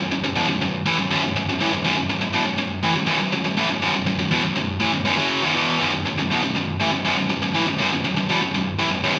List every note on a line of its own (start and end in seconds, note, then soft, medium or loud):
0.00 0.10 F#2 medium
0.11 0.22 B1 medium
0.11 0.23 F#2 medium
0.24 0.35 B1 medium
0.24 0.36 F#2 medium
0.35 0.48 E2 loud
0.35 0.48 B2 medium
0.48 0.60 B1 medium
0.48 0.61 F#2 medium
0.61 0.81 B1 medium
0.61 0.81 F#2 medium
0.86 0.98 A2 medium
0.86 0.98 E3 medium
0.98 1.09 B1 medium
0.98 1.11 F#2 medium
1.11 1.22 B1 medium
1.11 1.22 F#2 medium
1.23 1.35 B1 medium
1.23 1.35 F#2 medium
1.36 1.48 B1 medium
1.36 1.48 F#2 medium
1.49 1.60 B1 medium
1.49 1.60 F#2 medium
1.60 1.72 A2 medium
1.60 1.72 E3 medium
1.73 1.83 B1 medium
1.73 1.84 F#2 medium
1.84 1.95 B1 medium
1.84 1.96 F#2 medium
1.96 2.08 B1 medium
1.96 2.09 F#2 medium
2.10 2.20 B1 medium
2.10 2.21 F#2 medium
2.21 2.33 B1 medium
2.21 2.34 F#2 medium
2.33 2.45 E2 medium
2.33 2.45 B2 loud
2.46 2.57 B1 medium
2.46 2.58 F#2 medium
2.58 2.78 B1 medium
2.58 2.79 F#2 medium
2.83 2.95 A2 medium
2.83 2.95 E3 loud
2.96 3.06 B1 medium
2.96 3.06 F#2 medium
3.07 3.18 B1 medium
3.07 3.19 F#2 medium
3.19 3.32 B1 medium
3.19 3.32 F#2 medium
3.33 3.44 B1 medium
3.33 3.44 F#2 medium
3.45 3.57 B1 medium
3.45 3.58 F#2 medium
3.57 3.69 A2 medium
3.57 3.70 E3 medium
3.70 3.81 B1 medium
3.70 3.82 F#2 medium
3.82 3.94 B1 medium
3.82 3.94 F#2 loud
3.95 4.05 B1 medium
3.95 4.06 F#2 medium
4.06 4.17 B1 medium
4.06 4.18 F#2 medium
4.19 4.30 B1 medium
4.19 4.31 F#2 medium
4.31 4.43 E2 medium
4.31 4.44 B2 loud
4.44 4.54 B1 medium
4.44 4.55 F#2 medium
4.55 4.76 B1 medium
4.55 4.76 F#2 medium
4.80 4.92 A2 medium
4.80 4.93 E3 medium
4.93 5.04 B1 medium
4.93 5.05 F#2 medium
5.05 5.17 B1 medium
5.05 5.16 F#2 medium
5.18 5.42 F#2 medium
5.18 5.42 C#3 medium
5.18 5.43 F#3 medium
5.42 5.55 B1 medium
5.42 5.55 F#2 medium
5.55 5.79 E2 medium
5.55 5.79 B2 medium
5.55 5.80 E3 medium
5.79 5.91 B1 medium
5.79 5.91 F#2 loud
5.92 6.04 B1 medium
5.92 6.04 F#2 medium
6.05 6.16 B1 medium
6.05 6.17 F#2 medium
6.18 6.30 B1 medium
6.18 6.30 F#2 medium
6.30 6.42 E2 medium
6.30 6.42 B2 medium
6.43 6.54 B1 medium
6.43 6.54 F#2 medium
6.55 6.75 B1 medium
6.55 6.75 F#2 medium
6.80 6.91 A2 medium
6.80 6.92 E3 medium
6.92 7.03 B1 medium
6.92 7.04 F#2 medium
7.05 7.16 B1 medium
7.05 7.17 F#2 medium
7.18 7.28 B1 medium
7.18 7.29 F#2 medium
7.30 7.41 B1 medium
7.30 7.41 F#2 medium
7.42 7.54 B1 medium
7.42 7.55 F#2 medium
7.55 7.66 A2 medium
7.55 7.66 E3 medium
7.67 7.78 B1 medium
7.67 7.79 F#2 medium
7.79 7.91 B1 medium
7.79 7.91 F#2 loud
7.93 8.04 B1 medium
7.93 8.04 F#2 medium
8.05 8.16 B1 medium
8.05 8.16 F#2 medium
8.17 8.29 B1 medium
8.17 8.29 F#2 medium
8.30 8.41 E2 medium
8.30 8.41 B2 loud
8.42 8.53 B1 medium
8.42 8.53 F#2 medium
8.54 8.73 B1 medium
8.54 8.74 F#2 medium
8.79 8.90 A2 medium
8.79 8.90 E3 loud
8.91 9.03 B1 medium
8.91 9.03 F#2 medium
9.04 9.15 B1 medium
9.04 9.15 F#2 medium
9.16 9.19 B1 medium